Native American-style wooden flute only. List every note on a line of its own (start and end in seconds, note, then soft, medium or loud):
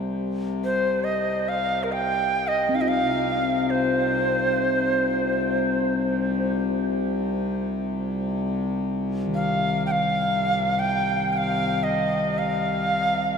0.65 1.05 C5 medium
1.04 1.50 D#5 medium
1.49 1.85 F5 medium
1.83 1.95 A#4 medium
1.93 2.49 G5 medium
2.48 2.77 D#5 medium
2.75 2.83 F5 medium
2.81 2.90 D#5 medium
2.88 3.71 F5 medium
3.70 6.59 C5 medium
9.35 9.83 F5 medium
9.86 9.93 G5 medium
9.92 10.81 F5 medium
10.79 11.32 G5 medium
11.32 11.39 G5 medium
11.37 11.85 F5 medium
11.83 12.40 D#5 medium
12.38 13.38 F5 medium